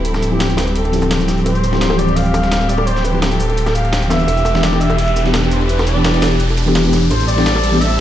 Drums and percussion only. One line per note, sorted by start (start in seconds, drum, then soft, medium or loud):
0.05 closed hi-hat medium
0.14 snare soft
0.14 high bongo medium
0.14 shaker soft
0.23 closed hi-hat medium
0.23 shaker medium
0.39 snare loud
0.39 closed hi-hat medium
0.39 high bongo soft
0.50 closed hi-hat soft
0.57 snare loud
0.57 closed hi-hat medium
0.57 open hi-hat medium
0.57 high bongo medium
0.57 shaker medium
0.67 closed hi-hat soft
0.76 closed hi-hat medium
0.76 closed hi-hat loud
0.84 closed hi-hat soft
0.84 high bongo medium
0.93 closed hi-hat medium
0.93 open hi-hat medium
0.93 shaker medium
1.02 closed hi-hat soft
1.02 high bongo medium
1.11 snare loud
1.11 closed hi-hat medium
1.20 closed hi-hat soft
1.20 shaker soft
1.28 snare soft
1.28 closed hi-hat medium
1.28 high bongo soft
1.28 shaker medium
1.38 closed hi-hat soft
1.46 closed hi-hat medium
1.46 high bongo medium
1.55 closed hi-hat soft
1.55 shaker soft
1.64 closed hi-hat medium
1.64 shaker medium
1.73 snare medium
1.73 high bongo soft
1.81 snare loud
1.81 closed hi-hat medium
1.90 high bongo medium
1.99 closed hi-hat medium
1.99 shaker medium
2.08 closed hi-hat soft
2.16 closed hi-hat loud
2.16 open hi-hat medium
2.16 high bongo soft
2.26 closed hi-hat soft
2.34 closed hi-hat medium
2.34 high bongo medium
2.34 shaker medium
2.43 snare soft
2.43 closed hi-hat soft
2.52 snare loud
2.52 closed hi-hat medium
2.60 high bongo soft
2.60 shaker soft
2.69 closed hi-hat medium
2.69 shaker medium
2.78 high bongo medium
2.87 closed hi-hat medium
2.96 snare soft
2.96 shaker soft
3.04 closed hi-hat medium
3.04 high bongo medium
3.04 shaker medium
3.22 snare loud
3.22 closed hi-hat medium
3.22 high bongo medium
3.31 closed hi-hat soft
3.40 closed hi-hat medium
3.40 open hi-hat medium
3.40 shaker medium
3.49 closed hi-hat soft
3.49 high bongo soft
3.57 closed hi-hat medium
3.66 snare soft
3.66 closed hi-hat soft
3.66 high bongo medium
3.75 closed hi-hat medium
3.75 shaker medium
3.85 closed hi-hat soft
3.93 snare loud
3.93 closed hi-hat medium
3.93 high bongo medium
4.02 closed hi-hat soft
4.02 shaker soft
4.10 snare soft
4.10 closed hi-hat medium
4.10 high bongo medium
4.10 shaker medium
4.20 closed hi-hat soft
4.28 closed hi-hat medium
4.28 high bongo medium
4.37 closed hi-hat soft
4.37 shaker soft
4.45 closed hi-hat medium
4.45 high bongo medium
4.45 shaker medium
4.55 snare medium
4.63 snare loud
4.63 closed hi-hat medium
4.73 high bongo medium
4.81 closed hi-hat medium
4.81 shaker medium
4.90 closed hi-hat soft
4.90 high bongo medium
4.98 closed hi-hat medium
4.98 open hi-hat medium
5.08 closed hi-hat soft
5.16 closed hi-hat medium
5.16 high bongo soft
5.16 shaker medium
5.26 snare soft
5.26 closed hi-hat soft
5.33 snare loud
5.33 closed hi-hat medium
5.33 high bongo medium
5.43 shaker soft
5.51 closed hi-hat medium
5.51 shaker medium
5.61 high bongo soft
5.69 closed hi-hat medium
5.79 snare soft
5.79 high bongo medium
5.79 shaker soft
5.87 closed hi-hat medium
5.87 shaker medium
6.04 snare loud
6.04 closed hi-hat medium
6.04 high bongo soft
6.14 closed hi-hat soft
6.22 snare loud
6.22 closed hi-hat medium
6.22 open hi-hat medium
6.22 high bongo medium
6.22 shaker medium
6.32 closed hi-hat soft
6.40 closed hi-hat medium
6.49 closed hi-hat soft
6.49 high bongo soft
6.57 closed hi-hat medium
6.57 open hi-hat medium
6.57 shaker medium
6.67 closed hi-hat soft
6.67 high bongo medium
6.75 snare loud
6.75 closed hi-hat medium
6.85 closed hi-hat soft
6.85 shaker soft
6.93 snare soft
6.93 closed hi-hat medium
6.93 high bongo soft
6.93 shaker medium
7.03 closed hi-hat soft
7.11 closed hi-hat medium
7.11 high bongo medium
7.20 closed hi-hat soft
7.20 shaker soft
7.28 closed hi-hat medium
7.28 shaker medium
7.37 snare medium
7.37 high bongo soft
7.46 snare loud
7.46 closed hi-hat medium
7.56 high bongo medium
7.64 closed hi-hat medium
7.64 shaker medium
7.73 closed hi-hat soft
7.81 closed hi-hat medium
7.81 open hi-hat medium
7.81 high bongo soft
7.91 closed hi-hat soft